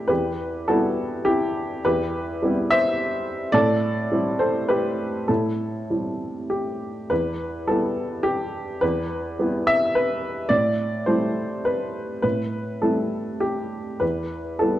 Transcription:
0.00 0.12 A2 medium
0.00 0.12 G3 soft
0.00 0.12 A3 soft
0.00 0.12 E4 soft
0.00 0.09 G4 medium
0.00 0.12 A4 medium
0.00 0.08 B4 medium
0.08 0.66 E2 soft
0.08 0.64 G4 medium
0.08 0.67 B4 medium
0.68 1.81 G3 soft
0.68 1.81 B3 soft
0.68 1.25 E4 medium
0.68 1.23 F#4 medium
0.68 1.26 A4 medium
1.25 1.80 E4 medium
1.25 1.83 G4 medium
1.85 2.40 E2 medium
1.85 2.66 G4 medium
1.85 2.70 B4 medium
2.43 3.50 G3 medium
2.43 3.51 B3 soft
2.43 3.51 E4 medium
2.71 2.97 C5 medium
2.71 2.98 E5 loud
3.52 4.09 A2 medium
3.52 4.35 A4 medium
3.52 4.38 D5 loud
4.12 5.25 G3 soft
4.12 5.25 C4 soft
4.12 5.25 E4 soft
4.39 4.67 A4 medium
4.39 4.68 C5 medium
4.69 5.25 G4 medium
4.69 5.29 B4 medium
5.28 5.88 A2 soft
5.28 5.89 E4 soft
5.28 6.50 A4 medium
5.91 7.07 G3 soft
5.91 7.07 C4 soft
5.91 7.07 E4 soft
6.50 7.10 G4 medium
7.10 7.66 E2 medium
7.10 7.68 B4 medium
7.67 8.78 G3 soft
7.67 8.78 B3 soft
7.67 8.78 E4 soft
7.67 8.25 A4 medium
8.23 8.81 G4 medium
8.81 9.37 E2 medium
8.81 9.67 B4 medium
9.39 10.47 G3 soft
9.39 10.47 B3 soft
9.39 10.48 E4 soft
9.67 9.95 E5 loud
9.95 10.51 B4 medium
10.49 11.05 A2 medium
10.49 11.07 D5 loud
11.06 12.19 G3 soft
11.06 12.20 A3 soft
11.06 12.20 E4 soft
11.06 11.64 C5 medium
11.65 12.21 B4 medium
12.22 12.81 A2 soft
12.22 12.82 B4 medium
12.82 13.98 G3 soft
12.82 13.98 A3 soft
12.82 13.98 E4 soft
12.82 13.42 A4 medium
13.40 14.01 G4 medium
14.00 14.58 E2 soft
14.00 14.59 B4 medium
14.59 14.79 G3 soft
14.59 14.79 B3 soft
14.59 14.79 E4 soft
14.59 14.79 A4 medium

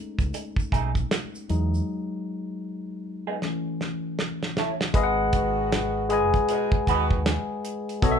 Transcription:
0.00 1.50 G#3 soft
0.00 1.50 A3 soft
0.00 1.50 C#4 soft
0.00 1.50 D#4 medium
0.19 0.31 C#2 medium
0.19 kick medium
0.19 closed hi-hat soft
0.19 shaker soft
0.34 muted clean electric guitar stroke soft
0.34 closed hi-hat medium
0.34 shaker medium
0.56 muted fingered electric bass stroke soft
0.56 kick medium
0.56 shaker soft
0.72 1.03 B1 medium
0.72 0.89 A3 medium
0.72 0.89 D#4 medium
0.72 0.89 G#4 medium
0.72 kick medium
0.72 closed hi-hat medium
0.95 kick medium
0.95 closed hi-hat soft
0.95 shaker soft
1.11 finger snap medium
1.11 snare loud
1.11 closed hi-hat medium
1.11 shaker medium
1.35 shaker soft
1.49 1.80 E2 medium
1.49 2.60 F#3 medium
1.49 2.61 G#3 medium
1.49 2.61 D#4 medium
1.49 closed hi-hat soft
1.49 shaker soft
1.74 shaker soft
3.27 3.36 B3 medium
3.27 3.35 D#4 medium
3.27 3.35 G#4 medium
3.42 3.96 E3 soft
3.42 3.97 A3 soft
3.42 3.97 C#4 soft
3.42 snare medium
3.81 snare medium
4.19 snare medium
4.43 snare medium
4.57 4.70 E4 soft
4.57 4.71 A4 medium
4.57 4.71 C#5 medium
4.57 snare medium
4.81 snare medium
4.94 6.30 G#1 loud
4.94 5.89 G#3 loud
4.94 5.89 G#4 medium
4.94 5.89 B4 medium
4.94 5.90 D#5 loud
4.94 5.04 F5 medium
4.94 kick loud
4.94 closed hi-hat medium
5.03 5.93 F#5 loud
5.33 6.06 D#3 medium
5.33 6.06 B3 medium
5.33 6.06 F#4 medium
5.33 kick loud
5.33 closed hi-hat medium
5.72 snare loud
5.72 closed hi-hat medium
6.09 7.32 G#3 medium
6.09 7.33 G#4 medium
6.09 7.34 B4 medium
6.09 7.34 D#5 medium
6.09 7.34 G#5 loud
6.09 closed hi-hat medium
6.34 kick medium
6.34 closed hi-hat soft
6.49 6.80 B2 medium
6.49 6.80 G#3 medium
6.49 6.80 D#4 medium
6.49 muted clean electric guitar stroke soft
6.49 closed hi-hat medium
6.72 muted fingered electric bass stroke soft
6.72 kick loud
6.87 7.37 D#2 medium
6.87 7.18 D#3 medium
6.87 7.18 B3 medium
6.87 7.18 F#4 medium
6.87 7.05 F#4 medium
6.87 7.05 B4 medium
6.87 7.06 D#5 medium
6.87 kick medium
6.87 closed hi-hat medium
7.11 kick medium
7.26 snare loud
7.26 closed hi-hat medium
7.65 closed hi-hat medium
7.89 closed hi-hat soft
8.02 8.19 B1 loud
8.02 8.19 B2 loud
8.02 8.19 B3 loud
8.02 8.19 A4 medium
8.02 8.19 C#5 medium
8.02 8.12 D#5 medium
8.02 kick loud
8.02 closed hi-hat medium
8.12 8.19 E5 loud

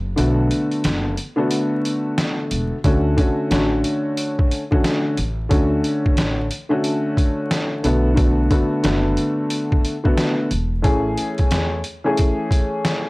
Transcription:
0.00 0.15 F#1 medium
0.16 0.48 B1 loud
0.16 1.11 D3 medium
0.16 1.11 A3 medium
0.16 1.12 B3 medium
0.16 1.12 F#4 loud
0.16 closed hi-hat medium
0.51 closed hi-hat medium
0.72 closed hi-hat soft
0.84 1.15 F#1 medium
0.84 snare loud
0.84 closed hi-hat medium
1.17 closed hi-hat medium
1.36 2.74 D3 loud
1.36 2.74 A3 medium
1.36 2.75 B3 medium
1.36 2.75 F#4 loud
1.51 closed hi-hat loud
1.85 closed hi-hat medium
2.18 snare loud
2.18 closed hi-hat medium
2.51 2.70 E1 medium
2.51 closed hi-hat medium
2.84 3.15 D2 loud
2.84 3.15 D3 medium
2.84 3.16 A3 medium
2.84 3.16 C#4 medium
2.84 3.17 F#4 loud
2.84 kick loud
2.84 closed hi-hat medium
3.16 3.48 D3 medium
3.16 3.49 A3 medium
3.16 3.49 C#4 medium
3.16 3.49 F#4 loud
3.16 kick loud
3.16 closed hi-hat medium
3.50 3.81 A1 loud
3.50 4.60 D3 medium
3.50 4.60 A3 medium
3.50 4.60 C#4 medium
3.50 4.61 F#4 loud
3.50 snare loud
3.50 closed hi-hat medium
3.84 closed hi-hat medium
4.17 closed hi-hat loud
4.39 kick loud
4.51 closed hi-hat medium
4.71 5.14 D3 medium
4.71 5.14 A3 medium
4.71 5.15 C#4 medium
4.71 5.15 F#4 loud
4.71 kick loud
4.84 snare loud
4.84 closed hi-hat medium
5.17 5.48 A1 medium
5.17 closed hi-hat medium
5.49 5.81 D2 loud
5.49 6.44 D3 loud
5.49 6.44 A3 medium
5.49 6.45 C#4 medium
5.49 6.45 F#4 loud
5.49 kick loud
5.49 closed hi-hat medium
5.84 closed hi-hat medium
6.06 kick medium
6.17 6.48 A1 loud
6.17 snare loud
6.17 closed hi-hat medium
6.51 closed hi-hat medium
6.69 7.82 D3 medium
6.69 7.83 A3 medium
6.69 7.84 C#4 medium
6.69 7.84 F#4 loud
6.84 closed hi-hat loud
7.17 kick loud
7.17 closed hi-hat medium
7.51 snare loud
7.51 closed hi-hat medium
7.84 8.47 B1 loud
7.84 8.13 D3 loud
7.84 8.13 A3 medium
7.84 8.14 B3 loud
7.84 8.15 F#4 loud
7.84 closed hi-hat medium
8.14 8.47 D3 loud
8.14 8.48 A3 medium
8.14 8.48 B3 medium
8.14 8.48 F#4 loud
8.14 kick loud
8.14 closed hi-hat medium
8.50 8.82 D3 medium
8.50 8.82 A3 medium
8.50 8.82 B3 medium
8.50 8.83 F#4 loud
8.50 kick loud
8.50 closed hi-hat medium
8.83 9.15 F#1 medium
8.83 9.93 D3 loud
8.83 9.93 A3 medium
8.83 9.94 B3 medium
8.83 9.94 F#4 loud
8.83 snare loud
8.83 closed hi-hat medium
9.17 closed hi-hat medium
9.50 closed hi-hat loud
9.72 kick medium
9.85 closed hi-hat medium
10.04 10.47 D3 medium
10.04 10.48 A3 medium
10.04 10.48 B3 medium
10.04 10.48 F#4 loud
10.04 kick loud
10.18 snare loud
10.18 closed hi-hat medium
10.51 10.82 E1 medium
10.51 closed hi-hat medium
10.82 11.15 A1 loud
10.82 11.77 E3 medium
10.82 11.78 A3 medium
10.82 11.78 C#4 medium
10.82 11.78 G#4 loud
10.82 kick loud
10.82 closed hi-hat medium
11.17 closed hi-hat medium
11.38 kick medium
11.38 closed hi-hat soft
11.51 11.81 E2 loud
11.51 snare loud
11.51 closed hi-hat medium
11.84 closed hi-hat medium
12.04 13.10 E3 loud
12.04 13.10 A3 medium
12.04 13.10 C#4 loud
12.04 13.10 G#4 loud
12.17 kick loud
12.17 closed hi-hat loud
12.51 kick loud
12.51 closed hi-hat medium
12.85 snare loud
12.85 closed hi-hat medium

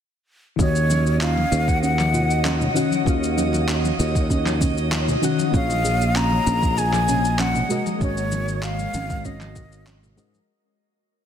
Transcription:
0.56 1.43 D#2 medium
0.56 2.70 D#3 medium
0.56 2.71 C#4 medium
0.56 0.68 C#4 medium
0.56 5.50 D#4 medium
0.56 5.50 F#4 medium
0.56 2.72 F#4 medium
0.56 10.44 C#5 medium
0.56 1.17 C#5 medium
0.56 5.50 D#5 medium
0.56 10.50 D#5 medium
0.56 10.50 D#6 medium
0.56 kick loud
0.56 shaker soft
0.62 2.73 D#5 medium
0.75 shaker soft
0.90 1.04 C#4 medium
0.90 muted conga medium
0.90 high conga medium
0.90 shaker medium
1.06 shaker soft
1.21 1.35 F4 medium
1.21 1.70 F5 medium
1.21 clap medium
1.21 shaker soft
1.37 muted conga medium
1.37 high conga medium
1.51 2.67 D#2 medium
1.51 1.60 C#4 medium
1.51 shaker medium
1.68 1.82 F#5 medium
1.68 kick medium
1.68 shaker soft
1.82 1.97 C#4 medium
1.82 2.71 F#5 loud
1.82 shaker soft
1.99 clap soft
1.99 muted conga soft
1.99 high conga medium
1.99 shaker soft
2.13 2.28 F4 medium
2.13 low conga medium
2.13 shaker medium
2.30 shaker soft
2.44 2.53 C#4 medium
2.44 clap medium
2.44 muted conga medium
2.44 high conga medium
2.44 shaker soft
2.61 low conga medium
2.61 shaker soft
2.74 3.02 D#3 medium
2.74 3.03 C#4 medium
2.74 2.90 C#4 medium
2.74 3.03 F#4 medium
2.74 3.04 F#5 loud
2.74 low conga medium
2.74 shaker medium
2.91 high conga medium
2.91 shaker soft
3.03 3.90 D#2 medium
3.03 5.18 D#3 medium
3.03 5.19 C#4 medium
3.03 3.21 F4 medium
3.03 5.20 F#4 medium
3.03 kick loud
3.03 muted conga soft
3.03 shaker soft
3.09 5.21 F5 medium
3.23 shaker soft
3.37 3.46 C#4 medium
3.37 high conga loud
3.37 shaker medium
3.53 muted conga medium
3.53 shaker soft
3.68 3.83 C#4 medium
3.68 clap medium
3.68 shaker soft
3.84 high conga medium
3.84 shaker soft
3.99 5.14 D#2 loud
3.99 4.14 F4 medium
3.99 shaker medium
4.15 kick loud
4.15 muted conga soft
4.15 shaker soft
4.30 4.39 C#4 medium
4.30 kick medium
4.30 shaker soft
4.46 clap soft
4.46 high conga medium
4.46 shaker soft
4.60 4.76 C#4 medium
4.60 kick medium
4.60 muted conga medium
4.60 low conga medium
4.60 shaker medium
4.77 shaker soft
4.91 5.07 F4 medium
4.91 clap loud
4.91 high conga medium
4.91 shaker soft
5.08 low conga medium
5.08 shaker soft
5.21 5.50 D#3 medium
5.21 5.50 C#4 medium
5.21 5.32 C#4 medium
5.21 5.51 F#4 medium
5.21 5.51 F#5 loud
5.21 muted conga medium
5.21 low conga medium
5.21 shaker medium
5.39 high conga medium
5.39 shaker soft
5.51 6.38 A#1 loud
5.51 7.68 F3 medium
5.51 7.65 A#3 medium
5.51 7.68 A#3 medium
5.51 5.68 C#4 medium
5.51 7.66 F4 medium
5.51 7.68 G#4 medium
5.51 7.67 G#4 medium
5.51 6.18 F5 loud
5.51 kick loud
5.51 shaker soft
5.57 7.68 C#5 medium
5.70 muted conga medium
5.70 shaker soft
5.84 5.99 G#4 medium
5.84 high conga medium
5.84 shaker medium
6.01 shaker soft
6.16 6.24 C#4 medium
6.16 6.79 A#5 loud
6.16 clap loud
6.16 shaker soft
6.31 muted conga soft
6.31 high conga medium
6.47 7.62 A#1 loud
6.47 6.61 C#4 medium
6.47 shaker medium
6.63 kick loud
6.63 shaker soft
6.77 6.92 G#4 medium
6.77 7.41 G#5 loud
6.77 muted conga medium
6.77 shaker soft
6.93 clap soft
6.93 high conga loud
6.93 shaker soft
7.08 7.17 C#4 medium
7.08 low conga medium
7.08 shaker medium
7.25 shaker soft
7.39 7.54 C#4 medium
7.39 7.87 F#5 loud
7.39 clap loud
7.39 muted conga soft
7.39 high conga medium
7.39 shaker soft
7.54 low conga medium
7.54 shaker soft
7.69 7.97 G#3 medium
7.69 10.46 G#3 medium
7.69 7.97 F#4 medium
7.69 10.46 F#4 medium
7.69 7.85 F#4 medium
7.69 10.46 A#4 medium
7.69 7.98 A#4 medium
7.69 7.98 D#5 medium
7.69 low conga medium
7.69 shaker medium
7.86 muted conga medium
7.86 high conga loud
7.86 shaker soft
7.98 8.85 G#1 loud
7.98 10.13 G#3 medium
7.98 8.10 C#4 medium
7.98 10.14 F#4 medium
7.98 8.65 C#5 medium
7.98 kick loud
7.98 shaker soft
8.02 10.15 A#4 medium
8.02 10.16 C#5 medium
8.17 shaker soft
8.32 8.47 C#4 medium
8.32 high conga medium
8.32 shaker medium
8.48 muted conga soft
8.48 shaker soft
8.63 8.78 F#4 medium
8.63 9.27 F5 medium
8.63 clap medium
8.63 shaker soft
8.79 high conga medium
8.79 shaker soft
8.94 10.19 G#1 loud
8.94 9.03 C#4 medium
8.94 muted conga medium
8.94 shaker medium
9.10 kick loud
9.10 shaker soft
9.25 9.40 C#4 medium
9.25 10.18 D#5 medium
9.25 kick medium
9.25 shaker soft
9.41 clap soft
9.41 high conga loud
9.41 shaker soft
9.56 9.70 F#4 medium
9.56 kick loud
9.56 muted conga medium
9.56 low conga medium
9.56 shaker medium
9.72 shaker soft
9.87 9.95 C#4 medium
9.87 clap loud
9.87 high conga medium
9.87 shaker soft
10.03 muted conga medium
10.03 low conga medium
10.03 shaker soft
10.16 10.38 G#2 medium
10.16 10.44 G#3 loud
10.16 10.32 C#4 medium
10.16 10.45 F#4 medium
10.16 10.45 A#4 medium
10.16 10.46 D#5 loud
10.16 low conga medium
10.16 shaker medium
10.34 high conga medium
10.34 shaker soft

